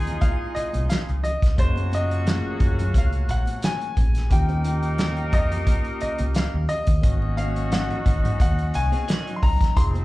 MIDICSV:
0, 0, Header, 1, 8, 480
1, 0, Start_track
1, 0, Tempo, 681818
1, 1114, Time_signature, 4, 2, 24, 8
1, 7074, End_track
2, 0, Start_track
2, 0, Title_t, "Grand piano"
2, 0, Program_c, 0, 0
2, 150, Note_on_c, 0, 77, 109
2, 375, Note_off_c, 0, 77, 0
2, 385, Note_on_c, 0, 75, 96
2, 630, Note_on_c, 0, 77, 103
2, 637, Note_off_c, 0, 75, 0
2, 685, Note_off_c, 0, 77, 0
2, 870, Note_on_c, 0, 75, 100
2, 1119, Note_off_c, 0, 75, 0
2, 1120, Note_on_c, 0, 72, 99
2, 1341, Note_off_c, 0, 72, 0
2, 1369, Note_on_c, 0, 75, 106
2, 1814, Note_off_c, 0, 75, 0
2, 2098, Note_on_c, 0, 77, 88
2, 2327, Note_on_c, 0, 78, 89
2, 2333, Note_off_c, 0, 77, 0
2, 2568, Note_off_c, 0, 78, 0
2, 2568, Note_on_c, 0, 80, 89
2, 3013, Note_off_c, 0, 80, 0
2, 3043, Note_on_c, 0, 79, 93
2, 3757, Note_on_c, 0, 75, 97
2, 3780, Note_off_c, 0, 79, 0
2, 4224, Note_off_c, 0, 75, 0
2, 4234, Note_on_c, 0, 75, 89
2, 4477, Note_on_c, 0, 77, 97
2, 4481, Note_off_c, 0, 75, 0
2, 4708, Note_on_c, 0, 75, 112
2, 4722, Note_off_c, 0, 77, 0
2, 5162, Note_off_c, 0, 75, 0
2, 5191, Note_on_c, 0, 77, 99
2, 5439, Note_off_c, 0, 77, 0
2, 5441, Note_on_c, 0, 78, 96
2, 5912, Note_off_c, 0, 78, 0
2, 5923, Note_on_c, 0, 78, 102
2, 6162, Note_on_c, 0, 80, 101
2, 6165, Note_off_c, 0, 78, 0
2, 6563, Note_off_c, 0, 80, 0
2, 6592, Note_on_c, 0, 84, 78
2, 6634, Note_off_c, 0, 84, 0
2, 6638, Note_on_c, 0, 82, 105
2, 6877, Note_on_c, 0, 84, 118
2, 6882, Note_off_c, 0, 82, 0
2, 6930, Note_off_c, 0, 84, 0
2, 7074, End_track
3, 0, Start_track
3, 0, Title_t, "Horn section"
3, 0, Program_c, 1, 61
3, 0, Note_on_c, 1, 63, 77
3, 0, Note_on_c, 1, 65, 77
3, 0, Note_on_c, 1, 68, 85
3, 846, Note_off_c, 1, 63, 0
3, 846, Note_off_c, 1, 65, 0
3, 846, Note_off_c, 1, 68, 0
3, 1112, Note_on_c, 1, 66, 90
3, 1113, Note_on_c, 1, 58, 70
3, 1113, Note_on_c, 1, 61, 75
3, 2765, Note_off_c, 1, 58, 0
3, 2765, Note_off_c, 1, 61, 0
3, 2765, Note_off_c, 1, 66, 0
3, 3026, Note_on_c, 1, 67, 79
3, 3027, Note_on_c, 1, 63, 78
3, 3028, Note_on_c, 1, 70, 79
3, 4682, Note_off_c, 1, 63, 0
3, 4682, Note_off_c, 1, 67, 0
3, 4682, Note_off_c, 1, 70, 0
3, 4951, Note_on_c, 1, 61, 76
3, 4951, Note_on_c, 1, 63, 75
3, 4952, Note_on_c, 1, 66, 82
3, 6603, Note_off_c, 1, 61, 0
3, 6603, Note_off_c, 1, 63, 0
3, 6603, Note_off_c, 1, 66, 0
3, 6874, Note_on_c, 1, 53, 82
3, 6874, Note_on_c, 1, 56, 72
3, 6875, Note_on_c, 1, 60, 75
3, 7074, Note_off_c, 1, 53, 0
3, 7074, Note_off_c, 1, 56, 0
3, 7074, Note_off_c, 1, 60, 0
3, 7074, End_track
4, 0, Start_track
4, 0, Title_t, "Tine electric piano"
4, 0, Program_c, 2, 4
4, 0, Control_c, 2, 64, 127
4, 0, Note_on_c, 2, 56, 70
4, 0, Note_on_c, 2, 60, 70
4, 0, Note_on_c, 2, 63, 68
4, 0, Note_on_c, 2, 64, 70
4, 0, Note_on_c, 2, 65, 84
4, 410, Note_off_c, 2, 56, 0
4, 414, Note_off_c, 2, 60, 0
4, 418, Note_off_c, 2, 63, 0
4, 444, Note_off_c, 2, 65, 0
4, 1100, Note_on_c, 2, 58, 80
4, 1108, Note_on_c, 2, 61, 67
4, 1118, Note_on_c, 2, 65, 73
4, 1123, Note_on_c, 2, 68, 87
4, 1125, Note_off_c, 2, 64, 0
4, 1125, Control_c, 2, 64, 0
4, 1227, Control_c, 2, 64, 127
4, 1296, Note_off_c, 2, 58, 0
4, 1300, Note_off_c, 2, 61, 0
4, 1305, Note_off_c, 2, 65, 0
4, 1307, Note_off_c, 2, 68, 0
4, 1341, Note_on_c, 2, 58, 66
4, 1348, Note_on_c, 2, 61, 54
4, 1355, Note_on_c, 2, 65, 59
4, 1364, Note_on_c, 2, 68, 66
4, 1537, Note_off_c, 2, 58, 0
4, 1540, Note_off_c, 2, 61, 0
4, 1544, Note_off_c, 2, 65, 0
4, 1548, Note_off_c, 2, 68, 0
4, 1578, Note_on_c, 2, 57, 65
4, 1585, Note_on_c, 2, 61, 70
4, 1590, Note_on_c, 2, 65, 75
4, 1598, Note_on_c, 2, 68, 88
4, 1623, Note_on_c, 2, 58, 78
4, 1636, Note_off_c, 2, 57, 0
4, 2329, Note_off_c, 2, 61, 0
4, 2332, Note_off_c, 2, 65, 0
4, 2336, Note_off_c, 2, 68, 0
4, 2348, Note_off_c, 2, 58, 0
4, 3026, Note_on_c, 2, 58, 78
4, 3035, Note_on_c, 2, 61, 69
4, 3040, Note_on_c, 2, 65, 74
4, 3043, Control_c, 2, 64, 0
4, 3048, Note_on_c, 2, 67, 87
4, 3173, Control_c, 2, 64, 127
4, 3219, Note_off_c, 2, 58, 0
4, 3224, Note_off_c, 2, 61, 0
4, 3226, Note_off_c, 2, 65, 0
4, 3230, Note_off_c, 2, 67, 0
4, 3266, Note_on_c, 2, 58, 64
4, 3275, Note_on_c, 2, 61, 60
4, 3282, Note_on_c, 2, 65, 58
4, 3290, Note_on_c, 2, 67, 73
4, 3459, Note_off_c, 2, 58, 0
4, 3463, Note_off_c, 2, 61, 0
4, 3467, Note_off_c, 2, 65, 0
4, 3471, Note_off_c, 2, 67, 0
4, 3503, Note_on_c, 2, 58, 79
4, 3513, Note_on_c, 2, 61, 75
4, 3520, Note_on_c, 2, 65, 74
4, 3528, Note_on_c, 2, 67, 91
4, 4248, Note_off_c, 2, 58, 0
4, 4253, Note_off_c, 2, 61, 0
4, 4257, Note_off_c, 2, 65, 0
4, 4261, Note_off_c, 2, 67, 0
4, 4936, Note_on_c, 2, 58, 75
4, 4942, Note_on_c, 2, 61, 71
4, 4951, Note_on_c, 2, 63, 70
4, 4958, Note_on_c, 2, 66, 85
4, 4962, Control_c, 2, 64, 0
4, 5076, Control_c, 2, 64, 127
4, 5133, Note_off_c, 2, 58, 0
4, 5136, Note_off_c, 2, 61, 0
4, 5141, Note_off_c, 2, 63, 0
4, 5145, Note_off_c, 2, 66, 0
4, 5180, Note_on_c, 2, 58, 64
4, 5190, Note_on_c, 2, 61, 60
4, 5194, Note_on_c, 2, 63, 55
4, 5200, Note_on_c, 2, 66, 70
4, 5375, Note_off_c, 2, 58, 0
4, 5381, Note_off_c, 2, 61, 0
4, 5383, Note_off_c, 2, 63, 0
4, 5386, Note_off_c, 2, 66, 0
4, 5418, Note_on_c, 2, 58, 80
4, 5425, Note_on_c, 2, 61, 71
4, 5430, Note_on_c, 2, 63, 73
4, 5438, Note_on_c, 2, 66, 92
4, 6165, Note_off_c, 2, 58, 0
4, 6169, Note_off_c, 2, 61, 0
4, 6171, Note_off_c, 2, 63, 0
4, 6175, Note_off_c, 2, 66, 0
4, 6863, Note_on_c, 2, 60, 73
4, 6870, Note_on_c, 2, 63, 70
4, 6876, Note_on_c, 2, 65, 68
4, 6881, Control_c, 2, 64, 0
4, 6883, Note_on_c, 2, 68, 91
4, 6987, Control_c, 2, 64, 127
4, 7056, Note_off_c, 2, 60, 0
4, 7060, Note_off_c, 2, 63, 0
4, 7063, Note_off_c, 2, 65, 0
4, 7066, Note_off_c, 2, 68, 0
4, 7074, End_track
5, 0, Start_track
5, 0, Title_t, "Clean electric guitar"
5, 0, Program_c, 3, 27
5, 6280, Note_on_c, 3, 68, 68
5, 6283, Note_on_c, 3, 60, 59
5, 6386, Note_off_c, 3, 68, 0
5, 6387, Note_off_c, 3, 60, 0
5, 6391, Note_on_c, 3, 66, 78
5, 6396, Note_on_c, 3, 58, 59
5, 6515, Note_off_c, 3, 66, 0
5, 6517, Note_off_c, 3, 58, 0
5, 6518, Note_on_c, 3, 63, 64
5, 6523, Note_on_c, 3, 54, 56
5, 6852, Note_off_c, 3, 63, 0
5, 6855, Note_off_c, 3, 54, 0
5, 7074, End_track
6, 0, Start_track
6, 0, Title_t, "Fingered electric bass"
6, 0, Program_c, 4, 33
6, 0, Note_on_c, 4, 39, 92
6, 130, Note_off_c, 4, 39, 0
6, 528, Note_on_c, 4, 36, 92
6, 625, Note_off_c, 4, 36, 0
6, 770, Note_on_c, 4, 37, 77
6, 866, Note_off_c, 4, 37, 0
6, 1003, Note_on_c, 4, 37, 92
6, 1103, Note_off_c, 4, 37, 0
6, 1116, Note_on_c, 4, 30, 108
6, 1696, Note_off_c, 4, 30, 0
6, 1833, Note_on_c, 4, 30, 104
6, 1950, Note_off_c, 4, 30, 0
6, 1960, Note_on_c, 4, 42, 96
6, 2061, Note_off_c, 4, 42, 0
6, 2074, Note_on_c, 4, 37, 96
6, 2289, Note_off_c, 4, 37, 0
6, 2315, Note_on_c, 4, 34, 90
6, 2431, Note_off_c, 4, 34, 0
6, 2796, Note_on_c, 4, 34, 89
6, 3011, Note_off_c, 4, 34, 0
6, 3035, Note_on_c, 4, 39, 116
6, 3752, Note_off_c, 4, 39, 0
6, 3752, Note_on_c, 4, 41, 103
6, 3968, Note_off_c, 4, 41, 0
6, 4366, Note_on_c, 4, 37, 103
6, 4464, Note_off_c, 4, 37, 0
6, 4605, Note_on_c, 4, 39, 85
6, 4703, Note_off_c, 4, 39, 0
6, 4840, Note_on_c, 4, 39, 89
6, 4940, Note_off_c, 4, 39, 0
6, 4953, Note_on_c, 4, 32, 112
6, 5534, Note_off_c, 4, 32, 0
6, 5674, Note_on_c, 4, 32, 84
6, 5790, Note_off_c, 4, 32, 0
6, 5801, Note_on_c, 4, 44, 100
6, 5901, Note_off_c, 4, 44, 0
6, 5915, Note_on_c, 4, 39, 95
6, 6129, Note_off_c, 4, 39, 0
6, 6160, Note_on_c, 4, 36, 87
6, 6273, Note_off_c, 4, 36, 0
6, 6638, Note_on_c, 4, 37, 84
6, 6850, Note_off_c, 4, 37, 0
6, 6878, Note_on_c, 4, 29, 101
6, 7074, Note_off_c, 4, 29, 0
6, 7074, End_track
7, 0, Start_track
7, 0, Title_t, "Muted fingered electric bass strokes"
7, 399, Note_on_c, 9, 29, 47
7, 469, Note_off_c, 9, 29, 0
7, 4241, Note_on_c, 9, 29, 44
7, 4312, Note_off_c, 9, 29, 0
7, 4477, Note_on_c, 9, 29, 49
7, 4547, Note_off_c, 9, 29, 0
7, 7074, End_track
8, 0, Start_track
8, 0, Title_t, "Drums"
8, 49, Note_on_c, 9, 42, 52
8, 51, Note_on_c, 9, 64, 73
8, 120, Note_off_c, 9, 42, 0
8, 121, Note_off_c, 9, 64, 0
8, 153, Note_on_c, 9, 36, 98
8, 154, Note_on_c, 9, 42, 76
8, 154, Note_on_c, 9, 62, 34
8, 154, Note_on_c, 9, 63, 70
8, 223, Note_off_c, 9, 36, 0
8, 224, Note_off_c, 9, 42, 0
8, 225, Note_off_c, 9, 62, 0
8, 225, Note_off_c, 9, 63, 0
8, 396, Note_on_c, 9, 42, 82
8, 401, Note_on_c, 9, 62, 30
8, 466, Note_off_c, 9, 42, 0
8, 472, Note_off_c, 9, 62, 0
8, 516, Note_on_c, 9, 63, 69
8, 520, Note_on_c, 9, 42, 57
8, 586, Note_off_c, 9, 63, 0
8, 591, Note_off_c, 9, 42, 0
8, 633, Note_on_c, 9, 42, 91
8, 641, Note_on_c, 9, 62, 33
8, 645, Note_on_c, 9, 38, 120
8, 704, Note_off_c, 9, 42, 0
8, 711, Note_off_c, 9, 62, 0
8, 715, Note_off_c, 9, 38, 0
8, 765, Note_on_c, 9, 42, 38
8, 836, Note_off_c, 9, 42, 0
8, 872, Note_on_c, 9, 64, 73
8, 877, Note_on_c, 9, 42, 76
8, 942, Note_off_c, 9, 64, 0
8, 947, Note_off_c, 9, 42, 0
8, 1003, Note_on_c, 9, 36, 96
8, 1006, Note_on_c, 9, 42, 59
8, 1019, Note_on_c, 9, 38, 38
8, 1073, Note_off_c, 9, 36, 0
8, 1076, Note_off_c, 9, 42, 0
8, 1089, Note_off_c, 9, 38, 0
8, 1114, Note_on_c, 9, 36, 103
8, 1114, Note_on_c, 9, 42, 80
8, 1122, Note_on_c, 9, 62, 32
8, 1184, Note_off_c, 9, 36, 0
8, 1185, Note_off_c, 9, 42, 0
8, 1193, Note_off_c, 9, 62, 0
8, 1237, Note_on_c, 9, 63, 73
8, 1247, Note_on_c, 9, 42, 35
8, 1307, Note_off_c, 9, 63, 0
8, 1318, Note_off_c, 9, 42, 0
8, 1350, Note_on_c, 9, 63, 65
8, 1359, Note_on_c, 9, 42, 83
8, 1420, Note_off_c, 9, 63, 0
8, 1430, Note_off_c, 9, 42, 0
8, 1487, Note_on_c, 9, 42, 48
8, 1558, Note_off_c, 9, 42, 0
8, 1593, Note_on_c, 9, 63, 70
8, 1596, Note_on_c, 9, 42, 94
8, 1602, Note_on_c, 9, 38, 118
8, 1663, Note_off_c, 9, 63, 0
8, 1667, Note_off_c, 9, 42, 0
8, 1672, Note_off_c, 9, 38, 0
8, 1829, Note_on_c, 9, 62, 37
8, 1832, Note_on_c, 9, 42, 73
8, 1833, Note_on_c, 9, 36, 99
8, 1900, Note_off_c, 9, 62, 0
8, 1902, Note_off_c, 9, 42, 0
8, 1903, Note_off_c, 9, 36, 0
8, 1962, Note_on_c, 9, 64, 80
8, 1966, Note_on_c, 9, 42, 53
8, 2032, Note_off_c, 9, 64, 0
8, 2036, Note_off_c, 9, 42, 0
8, 2072, Note_on_c, 9, 36, 94
8, 2074, Note_on_c, 9, 42, 80
8, 2074, Note_on_c, 9, 62, 31
8, 2074, Note_on_c, 9, 63, 73
8, 2142, Note_off_c, 9, 36, 0
8, 2145, Note_off_c, 9, 42, 0
8, 2145, Note_off_c, 9, 62, 0
8, 2145, Note_off_c, 9, 63, 0
8, 2200, Note_on_c, 9, 42, 39
8, 2270, Note_off_c, 9, 42, 0
8, 2315, Note_on_c, 9, 42, 77
8, 2386, Note_off_c, 9, 42, 0
8, 2435, Note_on_c, 9, 63, 70
8, 2444, Note_on_c, 9, 42, 58
8, 2505, Note_off_c, 9, 63, 0
8, 2514, Note_off_c, 9, 42, 0
8, 2552, Note_on_c, 9, 42, 98
8, 2559, Note_on_c, 9, 62, 35
8, 2563, Note_on_c, 9, 38, 119
8, 2622, Note_off_c, 9, 42, 0
8, 2629, Note_off_c, 9, 62, 0
8, 2634, Note_off_c, 9, 38, 0
8, 2685, Note_on_c, 9, 42, 38
8, 2755, Note_off_c, 9, 42, 0
8, 2794, Note_on_c, 9, 36, 83
8, 2794, Note_on_c, 9, 42, 74
8, 2794, Note_on_c, 9, 62, 34
8, 2794, Note_on_c, 9, 64, 72
8, 2864, Note_off_c, 9, 36, 0
8, 2864, Note_off_c, 9, 42, 0
8, 2865, Note_off_c, 9, 62, 0
8, 2865, Note_off_c, 9, 64, 0
8, 2920, Note_on_c, 9, 42, 58
8, 2933, Note_on_c, 9, 38, 38
8, 2990, Note_off_c, 9, 42, 0
8, 3003, Note_off_c, 9, 38, 0
8, 3031, Note_on_c, 9, 42, 92
8, 3032, Note_on_c, 9, 36, 106
8, 3041, Note_on_c, 9, 62, 32
8, 3102, Note_off_c, 9, 42, 0
8, 3103, Note_off_c, 9, 36, 0
8, 3111, Note_off_c, 9, 62, 0
8, 3159, Note_on_c, 9, 63, 80
8, 3162, Note_on_c, 9, 42, 32
8, 3229, Note_off_c, 9, 63, 0
8, 3233, Note_off_c, 9, 42, 0
8, 3268, Note_on_c, 9, 63, 71
8, 3270, Note_on_c, 9, 42, 77
8, 3338, Note_off_c, 9, 63, 0
8, 3341, Note_off_c, 9, 42, 0
8, 3397, Note_on_c, 9, 42, 49
8, 3467, Note_off_c, 9, 42, 0
8, 3509, Note_on_c, 9, 42, 93
8, 3509, Note_on_c, 9, 62, 35
8, 3509, Note_on_c, 9, 63, 65
8, 3514, Note_on_c, 9, 38, 127
8, 3579, Note_off_c, 9, 42, 0
8, 3579, Note_off_c, 9, 62, 0
8, 3579, Note_off_c, 9, 63, 0
8, 3584, Note_off_c, 9, 38, 0
8, 3637, Note_on_c, 9, 42, 32
8, 3708, Note_off_c, 9, 42, 0
8, 3747, Note_on_c, 9, 62, 35
8, 3751, Note_on_c, 9, 36, 105
8, 3751, Note_on_c, 9, 42, 76
8, 3817, Note_off_c, 9, 62, 0
8, 3822, Note_off_c, 9, 36, 0
8, 3822, Note_off_c, 9, 42, 0
8, 3883, Note_on_c, 9, 64, 74
8, 3885, Note_on_c, 9, 42, 53
8, 3953, Note_off_c, 9, 64, 0
8, 3955, Note_off_c, 9, 42, 0
8, 3990, Note_on_c, 9, 36, 103
8, 3990, Note_on_c, 9, 42, 83
8, 3990, Note_on_c, 9, 62, 32
8, 3990, Note_on_c, 9, 63, 70
8, 4060, Note_off_c, 9, 62, 0
8, 4060, Note_off_c, 9, 63, 0
8, 4061, Note_off_c, 9, 36, 0
8, 4061, Note_off_c, 9, 42, 0
8, 4115, Note_on_c, 9, 42, 39
8, 4185, Note_off_c, 9, 42, 0
8, 4228, Note_on_c, 9, 42, 81
8, 4232, Note_on_c, 9, 62, 33
8, 4299, Note_off_c, 9, 42, 0
8, 4302, Note_off_c, 9, 62, 0
8, 4354, Note_on_c, 9, 42, 61
8, 4358, Note_on_c, 9, 63, 71
8, 4424, Note_off_c, 9, 42, 0
8, 4429, Note_off_c, 9, 63, 0
8, 4467, Note_on_c, 9, 42, 94
8, 4479, Note_on_c, 9, 38, 123
8, 4537, Note_off_c, 9, 42, 0
8, 4549, Note_off_c, 9, 38, 0
8, 4711, Note_on_c, 9, 42, 76
8, 4712, Note_on_c, 9, 64, 70
8, 4781, Note_off_c, 9, 42, 0
8, 4783, Note_off_c, 9, 64, 0
8, 4834, Note_on_c, 9, 42, 60
8, 4840, Note_on_c, 9, 36, 89
8, 4905, Note_off_c, 9, 42, 0
8, 4910, Note_off_c, 9, 36, 0
8, 4951, Note_on_c, 9, 42, 95
8, 4952, Note_on_c, 9, 36, 112
8, 4964, Note_on_c, 9, 62, 32
8, 5022, Note_off_c, 9, 42, 0
8, 5023, Note_off_c, 9, 36, 0
8, 5035, Note_off_c, 9, 62, 0
8, 5084, Note_on_c, 9, 63, 76
8, 5154, Note_off_c, 9, 63, 0
8, 5194, Note_on_c, 9, 62, 33
8, 5194, Note_on_c, 9, 63, 63
8, 5195, Note_on_c, 9, 42, 76
8, 5265, Note_off_c, 9, 62, 0
8, 5265, Note_off_c, 9, 63, 0
8, 5266, Note_off_c, 9, 42, 0
8, 5323, Note_on_c, 9, 42, 45
8, 5326, Note_on_c, 9, 63, 50
8, 5394, Note_off_c, 9, 42, 0
8, 5396, Note_off_c, 9, 63, 0
8, 5433, Note_on_c, 9, 42, 99
8, 5439, Note_on_c, 9, 38, 123
8, 5442, Note_on_c, 9, 62, 35
8, 5442, Note_on_c, 9, 63, 72
8, 5504, Note_off_c, 9, 42, 0
8, 5509, Note_off_c, 9, 38, 0
8, 5512, Note_off_c, 9, 62, 0
8, 5512, Note_off_c, 9, 63, 0
8, 5564, Note_on_c, 9, 42, 32
8, 5565, Note_on_c, 9, 64, 94
8, 5635, Note_off_c, 9, 42, 0
8, 5636, Note_off_c, 9, 64, 0
8, 5673, Note_on_c, 9, 36, 99
8, 5673, Note_on_c, 9, 42, 77
8, 5676, Note_on_c, 9, 62, 36
8, 5743, Note_off_c, 9, 36, 0
8, 5744, Note_off_c, 9, 42, 0
8, 5747, Note_off_c, 9, 62, 0
8, 5807, Note_on_c, 9, 42, 48
8, 5811, Note_on_c, 9, 64, 85
8, 5877, Note_off_c, 9, 42, 0
8, 5882, Note_off_c, 9, 64, 0
8, 5913, Note_on_c, 9, 36, 97
8, 5914, Note_on_c, 9, 42, 82
8, 5915, Note_on_c, 9, 62, 33
8, 5915, Note_on_c, 9, 63, 65
8, 5983, Note_off_c, 9, 36, 0
8, 5985, Note_off_c, 9, 42, 0
8, 5985, Note_off_c, 9, 62, 0
8, 5985, Note_off_c, 9, 63, 0
8, 6044, Note_on_c, 9, 42, 34
8, 6114, Note_off_c, 9, 42, 0
8, 6152, Note_on_c, 9, 42, 81
8, 6158, Note_on_c, 9, 62, 35
8, 6223, Note_off_c, 9, 42, 0
8, 6229, Note_off_c, 9, 62, 0
8, 6281, Note_on_c, 9, 63, 70
8, 6285, Note_on_c, 9, 42, 58
8, 6351, Note_off_c, 9, 63, 0
8, 6355, Note_off_c, 9, 42, 0
8, 6395, Note_on_c, 9, 42, 96
8, 6399, Note_on_c, 9, 62, 33
8, 6407, Note_on_c, 9, 38, 116
8, 6465, Note_off_c, 9, 42, 0
8, 6470, Note_off_c, 9, 62, 0
8, 6477, Note_off_c, 9, 38, 0
8, 6528, Note_on_c, 9, 42, 41
8, 6599, Note_off_c, 9, 42, 0
8, 6634, Note_on_c, 9, 64, 69
8, 6636, Note_on_c, 9, 36, 97
8, 6638, Note_on_c, 9, 46, 52
8, 6705, Note_off_c, 9, 64, 0
8, 6706, Note_off_c, 9, 36, 0
8, 6708, Note_off_c, 9, 46, 0
8, 6763, Note_on_c, 9, 36, 93
8, 6764, Note_on_c, 9, 42, 60
8, 6777, Note_on_c, 9, 38, 38
8, 6833, Note_off_c, 9, 36, 0
8, 6835, Note_off_c, 9, 42, 0
8, 6848, Note_off_c, 9, 38, 0
8, 6875, Note_on_c, 9, 36, 96
8, 6877, Note_on_c, 9, 42, 88
8, 6883, Note_on_c, 9, 62, 35
8, 6946, Note_off_c, 9, 36, 0
8, 6947, Note_off_c, 9, 42, 0
8, 6953, Note_off_c, 9, 62, 0
8, 6998, Note_on_c, 9, 63, 68
8, 7007, Note_on_c, 9, 42, 36
8, 7069, Note_off_c, 9, 63, 0
8, 7074, Note_off_c, 9, 42, 0
8, 7074, End_track
0, 0, End_of_file